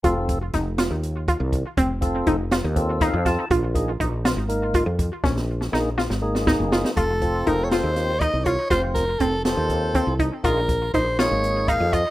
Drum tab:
HH |x-x-x-x-x-x-x-|x-x-x-x-x-x-x-|x-x-x-x-x-x-x-|--------------|
SD |----o-o-------|------o---o-o-|------o-------|oo-oo-oo-oo-oo|
BD |o-o-o-----o-o-|o-o-o---o-o-o-|o-o-o-----o-o-|o---------o---|

HH |x-x-x-x-x-x-x-|x-x-x-x-x-x-x-|x-x-x-x-x-x-x-|
SD |------o-o-----|--o---o-------|------o-------|
BD |o-o-o-----o-o-|o-o-o---o-o-o-|o-o-o-----o-o-|